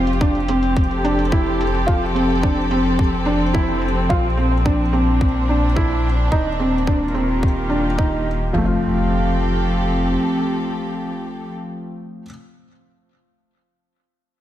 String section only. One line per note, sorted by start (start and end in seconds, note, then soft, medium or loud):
0.00 6.31 F3 medium
0.00 6.98 C4 medium
0.00 0.98 F4 medium
0.00 4.99 G4 medium
0.84 4.98 A4 medium
4.09 6.32 A#2 medium
4.61 7.20 D4 medium
6.31 8.54 D#3 medium
6.37 8.53 A#3 medium
7.07 8.54 F4 soft
7.31 8.54 G4 medium
8.54 11.52 F3 medium
8.62 11.52 C4 medium
8.71 11.52 G4 medium
8.79 11.52 A4 medium